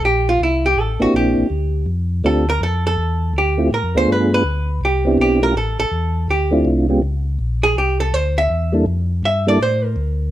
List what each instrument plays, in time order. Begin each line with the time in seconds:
0.02 tonewheel organ A#1, hollow-body jazz guitar G4
0.29 hollow-body jazz guitar F4
0.40 tonewheel organ C2, hollow-body jazz guitar E4
0.66 hollow-body jazz guitar G4
0.76 tonewheel organ A1
0.80 hollow-body jazz guitar A4
1.00 tonewheel organ A1 A#3 C4 D4 E4 G4, hollow-body jazz guitar F#4
1.14 tonewheel organ A#1, hollow-body jazz guitar G4
1.38 tonewheel organ A#1
1.50 tonewheel organ D2
1.86 tonewheel organ F2
2.24 tonewheel organ D2 A3 C4 D4 F4 G4, hollow-body jazz guitar A4
2.50 hollow-body jazz guitar A#4
2.61 tonewheel organ F2, hollow-body jazz guitar A4
2.87 hollow-body jazz guitar A4
2.97 tonewheel organ E2
3.33 tonewheel organ D2
3.38 hollow-body jazz guitar G4
3.58 tonewheel organ A3 C4 E4 F4 G4
3.71 tonewheel organ A2, hollow-body jazz guitar A#4
3.83 tonewheel organ F2
3.95 tonewheel organ D2 A3 B3 D4 F4 G#4, hollow-body jazz guitar C5
4.07 tonewheel organ G2
4.12 hollow-body jazz guitar B4
4.34 hollow-body jazz guitar B4
4.44 tonewheel organ D2
4.81 tonewheel organ C2, hollow-body jazz guitar G4
5.05 tonewheel organ B3 C4 D4 E4 G4
5.18 tonewheel organ B1, hollow-body jazz guitar G4
5.41 tonewheel organ A3 C#4 E4 F4 G4, hollow-body jazz guitar A#4
5.55 tonewheel organ A1, hollow-body jazz guitar A4
5.79 tonewheel organ A1, hollow-body jazz guitar A4
5.91 tonewheel organ E2
6.28 tonewheel organ D2, hollow-body jazz guitar G4
6.51 tonewheel organ A3 C4 D4 E4 F4
6.65 tonewheel organ C2
6.89 tonewheel organ G#3 B3 C#4 F4 G4
7.02 tonewheel organ C#2
7.39 tonewheel organ A#1
7.63 hollow-body jazz guitar G#4
7.76 tonewheel organ C2, hollow-body jazz guitar G4
8.00 hollow-body jazz guitar A4
8.13 tonewheel organ D2, hollow-body jazz guitar C5
8.38 hollow-body jazz guitar E5
8.50 tonewheel organ E2
8.72 tonewheel organ G3 A#3 D4 E4 A4
8.86 tonewheel organ F2
9.23 tonewheel organ G2, hollow-body jazz guitar E5
9.47 tonewheel organ G3 A#3 D4 E4 A4, hollow-body jazz guitar D5
9.60 tonewheel organ A2, hollow-body jazz guitar C5
9.84 hollow-body jazz guitar A#4
9.96 tonewheel organ D2